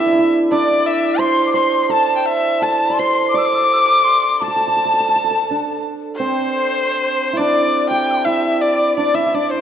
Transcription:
0.00 1.73 C4 medium
0.00 0.51 D4 medium
0.00 2.29 G4 medium
0.00 1.73 A4 medium
0.00 0.34 E5 loud
0.00 0.37 E5 medium
0.06 0.12 E4 soft
0.12 0.18 E4 medium
0.19 3.67 E4 soft
0.51 4.25 D4 medium
0.51 0.88 D5 loud
0.51 1.17 D5 medium
0.86 1.21 E5 medium
1.19 1.53 C5 medium
1.19 1.53 C6 loud
1.19 1.46 C6 medium
1.46 1.56 D6 medium
1.54 2.99 C5 medium
1.54 1.83 C6 loud
1.54 1.89 C6 medium
1.83 1.93 C6 medium
1.89 2.61 A4 medium
1.89 2.31 A5 medium
1.89 2.16 A5 medium
2.16 2.27 G5 medium
2.25 2.64 E5 loud
2.60 4.41 A4 medium
2.60 2.95 A5 medium
2.60 3.00 A5 medium
2.90 3.34 D5 medium
2.94 3.28 C6 medium
2.99 5.63 C5 medium
2.99 3.37 C6 medium
3.29 3.40 D6 medium
3.34 5.80 D5 medium
3.34 4.44 D6 loud
3.38 3.48 E6 medium
3.46 3.56 D6 medium
3.55 3.65 E6 medium
3.64 3.75 D6 medium
3.73 3.82 E6 medium
3.81 4.05 D6 loud
4.04 4.42 C6 medium
4.41 4.47 A4 medium
4.41 5.83 A5 medium
4.41 5.83 A5 loud
4.48 4.56 A4 medium
4.56 4.60 A4 medium
4.61 4.67 A4 medium
4.68 4.76 A4 medium
4.77 4.85 A4 medium
4.85 4.93 A4 medium
4.94 5.00 A4 soft
5.00 5.08 A4 medium
5.09 5.15 A4 medium
5.16 5.24 A4 medium
5.24 5.30 A4 soft
5.31 8.23 A4 medium
5.51 7.38 D4 medium
6.16 9.61 C4 medium
6.16 7.38 C5 loud
6.16 7.38 C5 medium
7.33 8.25 E4 medium
7.33 7.89 D5 medium
7.33 7.89 D5 loud
7.39 8.97 D4 medium
7.90 9.61 G4 medium
7.90 8.10 G5 medium
7.90 8.27 G5 loud
8.10 8.15 D6 soft
8.10 8.12 E6 soft
8.14 8.20 A5 soft
8.14 8.18 C6 soft
8.21 8.62 E5 medium
8.21 8.63 E5 medium
8.21 8.26 G5 soft
8.26 9.14 E4 medium
8.61 8.97 D5 medium
8.61 8.96 D5 medium
8.97 9.34 D4 medium
8.97 9.16 D5 medium
8.97 9.17 D5 medium
9.14 9.26 E4 medium
9.14 9.36 E5 medium
9.14 9.34 E5 medium
9.26 9.61 E4 medium
9.34 9.61 D4 medium
9.34 9.52 D5 medium
9.34 9.51 D5 medium
9.50 9.61 C5 medium

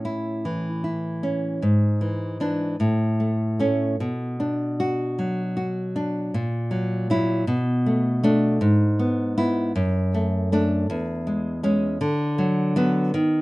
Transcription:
0.00 1.58 A2 medium
0.00 0.84 C#4 soft
0.05 0.68 E4 medium
0.45 1.62 E3 soft
0.84 1.62 E4 soft
1.23 1.62 C#4 medium
1.62 2.75 G#2 medium
2.01 2.39 E3 soft
2.40 2.75 E3 soft
2.40 2.75 D4 medium
2.80 3.95 A2 medium
3.20 3.58 A3 soft
3.59 3.95 A3 soft
3.59 3.95 C#4 medium
4.00 6.30 B2 medium
4.40 5.56 D4 medium
4.80 5.41 F#4 medium
5.19 6.33 F#3 medium
5.57 6.33 F#4 medium
5.96 6.33 D4 medium
6.34 7.44 A#2 medium
6.71 7.09 F#3 medium
7.10 7.44 F#3 medium
7.10 7.44 E4 medium
7.47 8.58 B2 medium
7.86 8.22 A3 medium
8.23 8.58 A3 medium
8.23 8.58 D4 medium
8.61 9.72 G#2 medium
8.99 9.36 B3 medium
9.38 9.72 B3 medium
9.38 9.72 E4 medium
9.76 10.85 F#2 medium
10.14 10.51 A3 medium
10.52 10.86 A3 medium
10.52 10.86 D4 medium
10.90 11.98 E2 medium
11.27 11.62 G#3 medium
11.63 11.97 G#3 medium
11.63 11.97 C#4 medium
12.01 13.11 D3 medium
12.38 12.75 F#3 medium
12.76 13.11 F#3 medium
12.76 13.11 B3 medium
13.14 13.42 D#3 medium

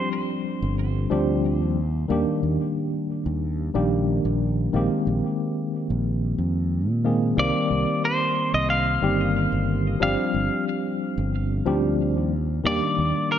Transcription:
0.00 1.07 F3 medium
0.00 1.07 G3 medium
0.00 1.07 C4 medium
0.00 1.08 D4 medium
0.00 1.08 G4 loud
0.62 1.06 G1 medium
1.10 1.61 D2 medium
1.10 1.29 F3 loud
1.10 1.29 G3 medium
1.10 1.29 C4 medium
1.10 1.29 D4 medium
1.10 1.30 G4 loud
1.61 2.04 D#2 medium
2.08 2.24 D#2 loud
2.08 3.70 D#3 loud
2.08 3.71 G3 medium
2.08 3.71 A#3 medium
2.08 3.71 D4 medium
2.08 3.72 G4 loud
2.43 2.56 D#2 medium
3.26 3.69 D#2 medium
3.74 4.19 A#1 loud
3.74 3.92 D#3 medium
3.74 3.93 G3 medium
3.74 3.93 A#3 medium
3.74 3.93 D4 medium
3.74 3.93 G4 loud
4.25 4.68 A#1 loud
4.73 4.87 A#1 medium
4.73 6.34 D#3 medium
4.73 6.35 G#3 medium
4.73 6.35 A#3 medium
4.73 6.36 C4 medium
4.73 6.36 G4 loud
5.07 5.20 A#1 medium
5.90 6.33 A#1 medium
6.38 6.89 F2 medium
6.89 7.32 A#2 medium
7.04 7.33 D#3 medium
7.04 7.34 G#3 medium
7.04 7.34 A#3 medium
7.04 7.34 C4 medium
7.04 7.34 G#4 medium
7.36 7.51 C2 loud
7.36 8.98 D#3 medium
7.36 8.98 G3 medium
7.36 8.99 A#3 medium
7.36 8.99 C4 medium
7.36 9.00 G4 loud
7.36 8.05 D5 loud
7.71 7.84 C2 medium
8.05 8.54 C5 medium
8.54 8.97 C2 loud
8.54 8.70 D#5 loud
8.70 10.01 F5 loud
9.02 9.46 G1 medium
9.02 9.20 D#3 medium
9.02 9.21 G3 medium
9.02 9.21 A#3 medium
9.02 9.21 C4 medium
9.02 9.21 G4 loud
9.52 9.96 G1 medium
10.00 10.15 G1 loud
10.00 11.62 F3 loud
10.00 11.62 G3 medium
10.00 11.63 C4 medium
10.00 11.63 D4 medium
10.00 11.63 G4 loud
10.00 10.64 F5 medium
10.34 10.48 G1 medium
11.18 11.61 G1 loud
11.65 12.17 D2 loud
11.65 11.84 F3 loud
11.65 11.84 G3 medium
11.65 11.84 C4 medium
11.65 11.85 D4 medium
11.65 11.85 G4 loud
12.17 12.60 D#2 loud
12.64 12.78 D#2 loud
12.64 13.39 D#3 loud
12.64 13.39 G3 medium
12.64 13.39 A#3 medium
12.64 13.39 D4 medium
12.64 13.39 G4 loud
12.64 13.31 D5 loud
12.98 13.12 D#2 medium
13.32 13.39 A#4 medium

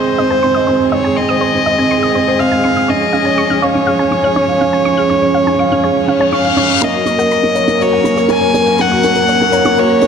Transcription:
0.00 2.86 D#3 medium
0.00 6.79 G#3 medium
0.00 0.19 C4 medium
0.00 2.86 C4 medium
0.00 1.05 G#4 medium
0.00 6.79 G#4 medium
0.00 0.31 C5 medium
0.00 0.93 C5 medium
0.00 0.56 D#5 medium
0.18 0.26 C4 medium
0.18 0.24 D#5 medium
0.31 0.43 C5 medium
0.31 0.36 G#5 medium
0.43 0.51 C4 medium
0.43 0.48 C6 medium
0.55 0.68 D#5 medium
0.55 0.60 D#6 medium
0.67 0.80 C4 medium
0.67 0.71 C5 medium
0.92 1.04 C4 medium
0.92 1.18 C#5 medium
0.92 0.98 D#5 medium
1.04 1.17 G#4 medium
1.04 1.10 G#5 medium
1.16 1.25 C4 medium
1.16 2.42 D#5 medium
1.16 1.22 C6 medium
1.29 1.42 C5 medium
1.29 1.34 D#6 medium
1.41 1.45 C5 medium
1.55 1.66 C4 medium
1.66 1.72 D#5 medium
1.66 1.78 D#5 medium
1.78 1.91 C4 medium
1.78 1.84 G#5 medium
1.91 2.03 G#4 medium
1.91 1.96 C6 medium
2.03 2.08 D#6 medium
2.15 2.23 C4 medium
2.15 2.19 C5 medium
2.28 2.40 C5 medium
2.39 2.47 C4 medium
2.39 2.45 D#5 medium
2.39 2.91 F5 medium
2.52 2.64 D#5 medium
2.52 2.57 G#5 medium
2.64 2.77 C4 medium
2.64 2.70 C6 medium
2.76 2.82 D#6 medium
2.88 6.79 F3 medium
2.88 3.01 C#4 medium
2.88 6.79 C#4 medium
2.88 2.92 C#5 medium
2.88 3.65 D#5 medium
3.01 3.13 G#4 medium
3.13 3.21 C#4 medium
3.13 3.19 F5 medium
3.25 3.38 C#5 medium
3.25 3.31 G#5 medium
3.38 3.43 C#6 medium
3.50 3.62 C#4 medium
3.50 3.56 F6 medium
3.62 3.66 C#5 medium
3.62 6.34 C#5 medium
3.62 3.74 F5 medium
3.75 3.87 C#4 medium
3.87 3.99 G#4 medium
3.87 3.93 F5 medium
3.99 4.05 G#5 medium
4.11 4.19 C#4 medium
4.11 4.17 C#6 medium
4.23 4.36 C#5 medium
4.23 4.30 F6 medium
4.36 4.44 C#4 medium
4.36 4.40 C#5 medium
4.48 4.61 F5 medium
4.61 4.73 C#4 medium
4.61 4.66 F5 medium
4.73 4.79 G#5 medium
4.85 4.97 C#4 medium
4.85 4.91 C#6 medium
4.97 5.10 G#4 medium
4.97 5.03 F6 medium
5.10 5.17 C#4 medium
5.10 5.13 C#5 medium
5.22 5.34 C#5 medium
5.34 5.40 F5 medium
5.47 5.59 C#4 medium
5.47 5.53 G#5 medium
5.59 5.71 F5 medium
5.59 5.65 C#6 medium
5.72 5.84 C#4 medium
5.72 5.77 F6 medium
5.84 5.96 G#4 medium
5.84 5.87 C#5 medium
5.84 reverse cymbal medium
6.07 6.15 C#4 medium
6.07 6.14 F5 medium
6.20 6.32 C#5 medium
6.20 6.26 G#5 medium
6.32 6.40 C#4 medium
6.32 6.85 F5 medium
6.32 6.38 C#6 medium
6.44 6.57 F5 medium
6.44 6.51 F6 medium
6.56 6.69 C#4 medium
6.56 6.61 C#5 medium
6.82 10.07 F#3 medium
6.82 6.94 A#3 medium
6.82 10.07 A#3 medium
6.82 10.07 C#4 medium
6.82 6.85 A#4 medium
6.82 10.07 A#4 medium
6.82 7.84 D#5 medium
6.82 closed hi-hat soft
6.82 riser medium
6.93 7.06 F#4 medium
7.05 7.14 A#3 medium
7.05 7.12 C#5 medium
7.05 closed hi-hat medium
7.18 7.31 A#4 medium
7.18 7.25 F#5 medium
7.18 closed hi-hat soft
7.31 7.37 A#5 medium
7.31 closed hi-hat soft
7.43 7.56 A#3 medium
7.43 7.49 C#6 medium
7.55 7.60 A#4 medium
7.55 7.68 C#5 medium
7.55 closed hi-hat medium
7.68 7.80 A#3 medium
7.68 closed hi-hat soft
7.79 7.92 F#4 medium
7.79 7.86 C#5 medium
7.79 8.31 C#5 medium
7.79 closed hi-hat soft
7.93 7.98 F#5 medium
8.04 8.12 A#3 medium
8.04 8.11 A#5 medium
8.04 closed hi-hat medium
8.17 8.29 A#4 medium
8.17 8.23 C#6 medium
8.17 closed hi-hat soft
8.28 8.37 A#3 loud
8.28 8.33 A#4 medium
8.28 closed hi-hat soft
8.33 8.83 G#5 medium
8.41 8.54 C#5 medium
8.54 8.66 A#3 loud
8.54 8.60 C#5 medium
8.54 closed hi-hat medium
8.67 8.72 F#5 medium
8.67 closed hi-hat soft
8.78 8.91 A#3 medium
8.78 9.81 F#5 medium
8.78 8.85 A#5 medium
8.78 closed hi-hat medium
8.91 9.03 F#4 medium
8.91 8.97 C#6 medium
9.03 9.11 A#3 medium
9.03 9.07 A#4 medium
9.03 closed hi-hat medium
9.15 9.28 A#4 medium
9.15 closed hi-hat medium
9.28 9.34 C#5 medium
9.28 closed hi-hat soft
9.41 9.53 A#3 medium
9.41 9.46 F#5 medium
9.52 9.65 C#5 medium
9.52 9.58 A#5 medium
9.52 closed hi-hat medium
9.64 9.77 A#3 medium
9.64 9.71 C#6 medium
9.64 closed hi-hat soft
9.77 9.90 F#4 medium
9.77 9.81 A#4 medium
9.77 10.07 C#5 medium
9.77 closed hi-hat soft
10.01 10.07 A#3 medium
10.01 10.07 C#5 medium
10.01 closed hi-hat medium

